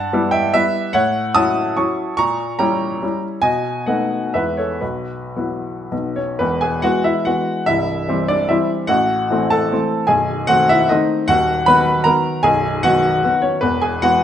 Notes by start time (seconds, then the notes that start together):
Already playing: G2 F#5 A5
0.13 G3 B3 E4
0.31 E5 G5
0.54 G3 B3 E4 B4 E5
0.93 A2 C#5 F#5
1.35 F#3 C#4 E4 A5 D#6
1.77 F#3 C#4 E4 A5 C#6
2.17 A#2 A#5 C#6
2.59 G3 C#4 E4 G5 A#5
3.02 G3 C#4 E4
3.42 B2 D#5 G#5
3.86 A3 B3 D#4 D#5 F#5
4.34 E2 G#3 B3 E4 B4 E5
4.57 A4 C#5
4.81 B1 F#4 B4
5.36 F#3 B3 E4
5.91 B1 F#3 B3 D#4
6.16 C#4 C#5
6.39 E1 E2 B3 B4
6.61 G#4 G#5
6.82 E3 G#3 B3 F#4 F#5
7.04 E4 E5
7.25 E3 G#3 B3 F#4 F#5
7.66 C1 C2 E4 E5
8.08 E3 G3 C4
8.28 D4 D5
8.49 E3 G3 C4 E4 E5
8.87 A1 A2 F#4 F#5
9.31 E3 A3 C4
9.50 A4 A5
9.71 E3 A3 C4
10.07 B0 B1 G#4 G#5
10.47 D#3 A3 C4 F#4 F#5
10.69 E4 E5
10.89 D#3 A3 C4 D#4 D#5
11.28 D#1 D#2 F#4 F#5
11.66 D#3 F#3 B3 B4 B5
12.04 D#3 F#3 B3 A#4 A#5
12.43 B0 B1 G#4 G#5
12.83 D#3 F#3 B3 F#4 F#5
13.24 D#3 F#3 B3
13.42 C#4 C#5
13.61 E1 E2 B3 B4
13.81 G#4 G#5
14.02 E3 G#3 B3 F#4 F#5